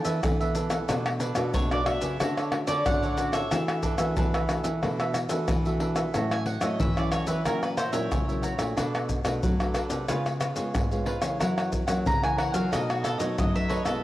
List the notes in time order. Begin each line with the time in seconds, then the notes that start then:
Already playing: E3 B3 D4 A4 A5
0.04 E3 A4 B4 E5, pandeiro, maracas
0.23 B2 E3 B3 D4 A4, pandeiro, tamborim, maracas, surdo
0.40 A4 B4 E5, pandeiro, maracas
0.55 D4 A4 B4 E5, pandeiro, maracas
0.70 A4 B4 E5, pandeiro, tamborim, maracas
0.88 B2 A3 D4 F#4 A4 B4 D5, pandeiro, tamborim, maracas, surdo
1.06 muted cavaquinho stroke, pandeiro, tamborim, maracas
1.20 D4 A4 B4 D5, pandeiro, maracas
1.35 B2 A3 D4 F#4 A4 B4 D5, pandeiro, tamborim, maracas
1.54 F#2 B2 D4 A4 B4 C#5 D5, pandeiro, maracas, surdo
1.71 A3 D4 F#4 A4 B4 D5, pandeiro, tamborim, maracas
1.86 A3 D4 F#4 E5, pandeiro, tamborim
2.01 C#3 A4 B4 D5, pandeiro, maracas
2.20 D3 A3 C#4 F#4 A4 C#5 D5, pandeiro, tamborim, maracas, surdo
2.37 A4 C#5 D5, pandeiro, tamborim, maracas
2.52 A3 C#4 F#4, muted cavaquinho stroke, pandeiro, tamborim
2.67 D3 A4 C#5 D5, pandeiro, maracas
2.86 A2 D3 A3 C#4 F#4 F#5, pandeiro, tamborim, maracas, surdo
3.03 A4 C#5 D5, pandeiro, maracas
3.17 A3 C#4 F#4 A4 C#5 D5, pandeiro, maracas
3.32 A4 C#5 D5 E5, pandeiro, tamborim, maracas
3.51 E3 A3 D4 F#4 A4 B4 E5, pandeiro, tamborim, maracas, surdo
3.68 muted cavaquinho stroke, pandeiro, tamborim, maracas
3.83 D4 A4 B4 E5, pandeiro, maracas, surdo
3.98 E3 A3 D4 F#4 A4 B4 E5, pandeiro, tamborim, maracas
4.17 B2 E3 D4 A4 B4 E5, pandeiro, maracas, surdo
4.34 A4 B4 E5, pandeiro, tamborim, maracas
4.49 A3 D4 F#4, pandeiro, tamborim, maracas
4.63 E3 A4 B4 E5, pandeiro, maracas
4.82 B2 E3 A3 D4 F#4 A4 B4 E5, pandeiro, tamborim, maracas, surdo
5.00 A4 B4 E5, pandeiro, tamborim, maracas
5.14 muted cavaquinho stroke, pandeiro, tamborim, maracas
5.29 E3 A3 D4 F#4 A4 B4 E5, pandeiro, maracas
5.48 B2 E3, pandeiro, tamborim, maracas, surdo
5.65 A3 D4 F#4 A4 B4 E5, pandeiro, maracas
5.80 D4 A4 B4 E5, pandeiro
5.96 A4 B4 E5, pandeiro, tamborim, maracas
6.14 A2 F#3 C#4 E4 F#4 A4 C#5 E5, pandeiro, tamborim, maracas, surdo
6.31 A4 C#5 E5 G#5, pandeiro, tamborim, maracas
6.46 F#5, muted cavaquinho stroke, pandeiro
6.61 A2 F#3 C#4 E4 A4 C#5 D#5 E5, pandeiro, tamborim, maracas
6.80 E3 E5, pandeiro, maracas, surdo
6.97 F#3 C#4 E4 A4 C#5 D5 E5, pandeiro, tamborim, maracas
7.12 F#4 A4 C#5 E5, pandeiro, tamborim, maracas
7.27 E3 A4 B4 C#5 E5, pandeiro, maracas
7.45 A#2 F#3 C#4 E4 F#4 A#4 C#5 E5, pandeiro, tamborim, maracas, surdo
7.63 B4, muted cavaquinho stroke, pandeiro, tamborim, maracas
7.77 F#4 A#4 C5 C#5 E5, pandeiro, tamborim, maracas
7.92 A#2 F#3 C#4 E4 A#4 C#5 E5, pandeiro, maracas
8.12 A#2 C#3, pandeiro, tamborim, maracas, surdo
8.28 F#3 C#4 E4 A#4 C#5 E5, pandeiro, maracas
8.42 F#4 A#4 C#5 E5, pandeiro, maracas
8.58 A#2 A3 D4 F#4 A#4 C#5 E5, pandeiro, tamborim, maracas
8.76 B2 D4 A4 B4 D5, pandeiro, tamborim, maracas, surdo
8.94 A4 B4 D5, pandeiro, tamborim, maracas
9.09 muted cavaquinho stroke, pandeiro, maracas, surdo
9.24 B2 A3 D4 F#4 A4 B4, pandeiro, tamborim, maracas
9.43 F#3, pandeiro, maracas, surdo
9.59 A3 D4 F#4 A4 B4 D5, pandeiro, tamborim, maracas
9.74 D4 A4 B4 D5, pandeiro, tamborim, maracas
9.90 C3 A4 B4 D5, pandeiro, maracas
10.08 C#3 G#3 B3 F4 B4 C#5 F5, pandeiro, tamborim, maracas, surdo
10.26 muted cavaquinho stroke, pandeiro, tamborim, maracas
10.40 F4 B4 C#5 F5, pandeiro, tamborim, maracas
10.55 C#3 G#3 B3 F4 B4 C#5 F5, pandeiro, maracas
10.75 G#2, pandeiro, tamborim, maracas, surdo
10.91 G#3 B3 F4 B4 C#5 F5, pandeiro, maracas
11.06 F4 B4 C#5 F5, pandeiro
11.21 C#3 E3 A#3 C#4 B4 C#5 F5, pandeiro, tamborim, maracas
11.39 F#2 F#3 E4 A#4 C#5 F#5, pandeiro, tamborim, maracas, surdo
11.57 A#4 C#5 F#5, pandeiro, tamborim, maracas
11.71 muted cavaquinho stroke, pandeiro, maracas, surdo
11.87 E3 F#3 A#3 C#4 A#4 C#5 F#5, pandeiro, tamborim, maracas
12.06 C#3 A#5, pandeiro, maracas, surdo
12.22 E3 A#3 C#4 A#4 C#5 F#5 G#5, pandeiro, tamborim, maracas
12.37 E4 A#4 C#5 F#5, pandeiro, tamborim
12.52 F#3 A#4 C#5 F5 F#5, pandeiro, maracas
12.71 B2 F#3 A3 D#4 A4 B4 D#5, pandeiro, tamborim, maracas, surdo
12.89 F#4, muted cavaquinho stroke, pandeiro, tamborim, maracas
13.03 D#4 A4 B4 D#5, pandeiro, tamborim, maracas
13.18 B2 F#3 A3 D#4 A4 B4 C#5 D#5, pandeiro, maracas
13.38 F#2 F#3 D#5, pandeiro, tamborim, maracas, surdo
13.54 F#3 A3 D#4 A4 B4 D#5 E5, pandeiro, maracas
13.69 D#4 A4 B4 C#5 D#5, pandeiro
13.85 B2 G#3 B3 E4 A4 B4 D#5, pandeiro, tamborim, maracas